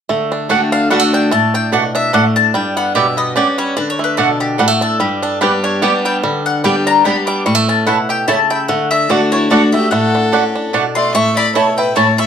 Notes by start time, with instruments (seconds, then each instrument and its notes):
0.09 steel-string acoustic guitar D3, five-string banjo A3
0.32 five-string banjo D4
0.49 steel-string acoustic guitar D3 A3 D4 F#4, mandolin A3 F#4 D5 F#5 G5, five-string banjo D4
0.72 five-string banjo D4, mandolin F5
0.90 steel-string acoustic guitar D3 A3 D4 F#4, five-string banjo G3, mandolin A3 F#4 D5 F#5
0.99 five-string banjo A3
1.13 five-string banjo D4, mandolin G5
1.31 steel-string acoustic guitar A2, five-string banjo A3, mandolin A5
1.54 five-string banjo D4, mandolin G5
1.72 steel-string acoustic guitar B2, mandolin A3 F#4 D5 F#5, five-string banjo D4
1.95 five-string banjo D4, mandolin E5
2.13 steel-string acoustic guitar A2, mandolin A3 F#4 D5 F#5, five-string banjo A3
2.36 five-string banjo D4, mandolin A5
2.54 steel-string acoustic guitar G2, five-string banjo G3, mandolin G5
2.77 five-string banjo B3, mandolin F#5
2.95 steel-string acoustic guitar B2, mandolin B3 G4 D5 E5 G5, five-string banjo G4
3.17 five-string banjo B3, mandolin D#5
3.36 mandolin B3 G4 D5 G5, steel-string acoustic guitar C#4, five-string banjo D4
3.58 five-string banjo G3, mandolin C#5
3.77 steel-string acoustic guitar D3, five-string banjo D4, mandolin B4
3.90 mandolin C#5
3.99 five-string banjo A3
4.04 mandolin B4
4.17 steel-string acoustic guitar B2, mandolin A3 F#4 A4 D5 F#5, five-string banjo D4
4.40 five-string banjo D4, mandolin G4
4.58 steel-string acoustic guitar A2, five-string banjo G3, mandolin A3 F#4 D5 F#5
4.68 five-string banjo A3
4.81 five-string banjo D4, mandolin A4
5.00 steel-string acoustic guitar G2, five-string banjo G3, mandolin G4
5.22 five-string banjo D4, mandolin A4
5.41 five-string banjo G3, steel-string acoustic guitar G3 B3 D4 G4, mandolin B3 G4 B4 D5 G5
5.64 five-string banjo D4, mandolin C#5
5.82 steel-string acoustic guitar G3 B3 D4 G4, mandolin B3 G4 D5 G5, five-string banjo B3
6.05 five-string banjo G3, mandolin G5
6.23 steel-string acoustic guitar D3, five-string banjo G3
6.46 mandolin F#5
6.64 five-string banjo G3, steel-string acoustic guitar G3 B3 D4 G4, mandolin B3 G4 D5 G5
6.87 five-string banjo D4, mandolin A#5
7.04 steel-string acoustic guitar G3 B3 D4 G4, mandolin B3 G4 D5 G5 B5, five-string banjo B3
7.27 five-string banjo G3, mandolin D6
7.46 steel-string acoustic guitar A2, five-string banjo G3, mandolin C#6
7.55 five-string banjo A3
7.68 five-string banjo C#4, mandolin A5
7.87 steel-string acoustic guitar B2, mandolin A3 E4 C#5 F#5 A5, five-string banjo E4
8.09 five-string banjo G4, mandolin G5
8.28 steel-string acoustic guitar C#3, mandolin A3 E4 C#5 A5, five-string banjo A3
8.50 five-string banjo E4, mandolin G5
8.68 steel-string acoustic guitar D3, five-string banjo A3, mandolin F#5
8.91 five-string banjo D4, mandolin E5
9.09 steel-string acoustic guitar D3 A3 D4 F#4, mandolin A3 F#4 D5 F#5, five-string banjo D4, fiddle F#4
9.32 five-string banjo D4, fiddle E4, mandolin C#5
9.50 steel-string acoustic guitar D3 A3 D4 F#4, mandolin A3 F#4 D5 F#5, five-string banjo D4, fiddle F#4
9.72 five-string banjo A3, steel-string acoustic guitar D4 F#4, fiddle G4, mandolin E5
9.91 steel-string acoustic guitar A2, five-string banjo A3, fiddle A4, mandolin F#5
10.15 five-string banjo D4
10.32 mandolin A3 F#4 D5 F#5, steel-string acoustic guitar C#4, five-string banjo D4
10.55 five-string banjo D4
10.73 steel-string acoustic guitar B2, mandolin A3 F#4 D5 F#5, five-string banjo D4
10.95 five-string banjo A3, fiddle D5, mandolin C6
11.15 steel-string acoustic guitar A2, five-string banjo A3, fiddle E5, mandolin C#6
11.37 five-string banjo E4, fiddle D5, mandolin B5
11.55 steel-string acoustic guitar B2, mandolin A3 E4 C#5 A5, five-string banjo A3, fiddle C#5
11.78 five-string banjo E4, fiddle B4, mandolin G5
11.96 steel-string acoustic guitar A2, mandolin A3 E4 C#5 A5, five-string banjo C#4, fiddle C#5
12.18 five-string banjo A3, fiddle E5, mandolin C#6